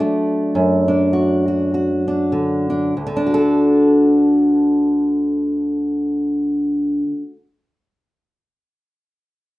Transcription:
0.00 1.90 F#3 medium
0.00 2.32 A3 medium
0.00 0.88 D4 soft
0.00 2.98 D5 medium
0.55 2.93 F#2 medium
0.88 2.06 D4 soft
1.13 1.46 F#4 soft
1.48 1.72 F#4 soft
1.74 2.94 F#4 soft
2.08 2.69 D4 soft
2.32 3.05 D3 medium
2.70 2.93 D4 soft
2.97 7.03 D2 soft
3.07 7.13 D3 medium
3.17 7.23 D4 medium
3.27 7.33 F#4 soft
3.34 7.36 A4 medium

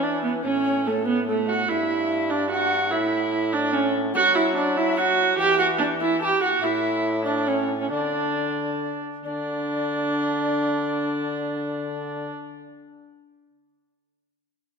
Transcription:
0.00 0.41 E3 medium
0.00 0.23 D4 medium
0.00 0.23 D5 medium
0.23 0.31 B3 medium
0.23 0.46 B4 medium
0.43 1.66 A2 medium
0.43 0.88 C#4 medium
0.43 0.85 C#5 medium
0.85 1.05 A3 medium
0.85 1.07 A4 medium
1.05 1.26 B3 medium
1.05 1.27 B4 medium
1.27 1.50 A3 medium
1.27 1.49 A4 medium
1.47 1.69 F#4 medium
1.47 1.68 F#5 medium
1.68 2.93 G2 medium
1.68 2.31 E4 medium
1.68 2.32 E5 medium
2.30 2.50 D4 medium
2.30 2.50 D5 medium
2.50 2.92 F#4 medium
2.50 2.56 G5 medium
2.55 2.94 F#5 medium
2.90 4.16 A2 medium
2.90 3.54 E4 medium
2.90 3.53 E5 medium
3.53 3.74 D4 medium
3.53 3.73 D5 medium
3.73 3.93 C#4 medium
3.73 3.79 C#5 medium
4.14 5.37 F#3 medium
4.14 4.36 F#4 loud
4.14 4.33 F#5 medium
4.35 4.55 E4 medium
4.35 4.55 E5 medium
4.55 4.78 D4 medium
4.55 4.79 D5 medium
4.77 4.99 E4 medium
4.77 4.97 E5 medium
4.97 5.37 F#4 loud
4.97 5.37 F#5 medium
5.37 6.32 E3 medium
5.37 5.58 G4 loud
5.37 5.58 G5 medium
5.58 5.67 F#4 medium
5.58 5.79 F#5 medium
5.78 5.86 D4 medium
5.78 5.86 D5 medium
6.00 6.20 E4 medium
6.00 6.20 E5 medium
6.21 6.42 G4 loud
6.21 6.26 A5 medium
6.25 6.41 G5 medium
6.42 6.65 F#4 medium
6.42 6.48 F#5 medium
6.61 7.91 A2 medium
6.61 7.24 E4 medium
6.61 7.23 E5 medium
7.25 7.49 D4 medium
7.25 7.31 D5 medium
7.46 7.79 C#4 medium
7.46 7.78 C#5 medium
7.79 7.90 C#4 medium
7.79 7.89 C#5 medium
7.90 9.03 D3 medium
7.90 9.01 D4 medium
7.90 9.01 D5 medium
9.25 12.31 D3 medium
9.25 12.33 D4 medium
9.25 12.32 D5 medium

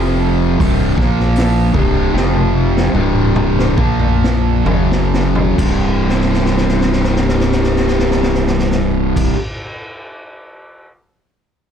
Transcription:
0.00 0.56 F1 medium
0.00 0.58 F2 medium
0.00 0.58 C3 loud
0.00 0.59 F3 loud
0.58 0.95 C1 loud
0.58 0.95 C2 medium
0.58 0.96 G2 medium
0.58 0.96 C3 loud
0.58 kick loud
0.58 open hi-hat medium
0.97 1.70 A#1 loud
0.97 1.72 A#2 medium
0.97 1.73 F3 medium
0.97 1.73 A#3 medium
0.97 kick loud
0.97 snare soft
1.20 snare soft
1.36 snare loud
1.36 open hi-hat medium
1.73 2.11 C1 medium
1.73 2.12 C2 medium
1.73 2.12 G2 loud
1.73 2.12 C3 loud
1.73 kick loud
2.12 2.90 F1 medium
2.12 2.92 F2 loud
2.12 2.92 C3 medium
2.12 2.93 F3 loud
2.16 snare medium
2.34 high tom medium
2.77 snare medium
2.93 3.73 C1 medium
2.93 3.76 C2 medium
2.93 3.76 G2 medium
2.93 3.76 C3 loud
2.93 mid tom medium
3.36 mid tom medium
3.59 snare medium
3.77 4.61 A#1 medium
3.77 4.64 A#2 medium
3.77 4.64 F3 medium
3.77 4.64 A#3 medium
3.77 kick loud
4.00 mid tom medium
4.24 snare medium
4.65 5.54 F#1 medium
4.65 5.56 F#2 medium
4.65 5.57 C#3 medium
4.65 5.57 F#3 loud
4.65 floor tom medium
4.92 snare medium
5.14 snare medium
5.35 floor tom medium
5.56 9.31 C1 medium
5.56 9.34 C2 medium
5.56 9.36 G2 medium
5.56 kick loud
5.56 crash medium
5.61 9.37 C3 loud
6.09 snare soft
6.21 snare soft
6.34 snare soft
6.45 snare soft
6.57 snare medium
6.69 snare medium
6.81 snare medium
6.92 snare medium
7.04 snare medium
7.16 snare medium
7.28 snare medium
7.40 snare medium
7.52 snare medium
7.64 snare medium
7.76 snare medium
7.88 snare medium
7.99 snare medium
8.11 snare medium
8.23 snare medium
8.34 snare medium
8.47 snare medium
8.59 snare medium
8.71 snare medium
9.16 kick loud
9.16 crash medium

